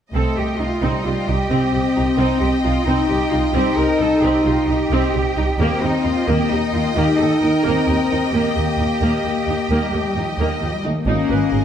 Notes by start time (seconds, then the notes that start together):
0.12 C2 A3 C4 A4 D#5 G5
0.36 C2 G4
0.59 C2 D#4 F4
0.82 C2 G3 C4 D#4
1.04 C2 F4 G4
1.27 C2 D#4 G4
1.49 C2 C4
1.73 C2 G4
1.96 C2 D#4
2.18 C2 C4 D#4
2.41 C2 G4
2.64 C2 D#4 F4
2.85 C2 C4 D#4
3.08 C2 G4
3.32 C2 D#4 F4
3.54 C2 C4 D#4 G4
3.77 C2 G4 A#4
4.00 C2 D#4 A4
4.22 C2 C4 G4
4.46 C2 F4 G4
4.67 C2 D#4 G4
4.90 C2 C4
5.14 C2 G4
5.36 C2 D#4
5.58 D#2 A#3 C4 G4 D#5 G5
5.81 D#2 D#4 G4
6.05 D#2 D#4 F4
6.27 D#2 A#3 G4
6.50 D#2 D#4 G4
6.73 D#2 D#4 F4
6.95 D#2 A#3 D#4 G4
7.18 D#2 G4 A4
7.42 D#2 D#4 A#4
7.63 D#2 A#3 C4
7.87 D#2 G4
8.10 D#2 D#4
8.32 D#2 A#3 G4
8.56 D#2 G4
8.78 D#2 D#4
9.01 D#2 A#3
9.24 D#2 G4
9.47 D#2 D#4
9.69 D#2 A#3
9.81 G3
9.92 D#2 A3 G4
10.06 G3
10.15 D#2 F3 D#4
10.29 D#3
10.38 D#2 D3 A#3
10.51 D#3
10.61 D#2 F3 G4
10.74 G3
10.83 D#2 A3 D#4
10.96 A#3
11.06 G#1 A#3 C#4 D#4 D#5 G#5
11.30 G#1 B4
11.52 G#1 G#4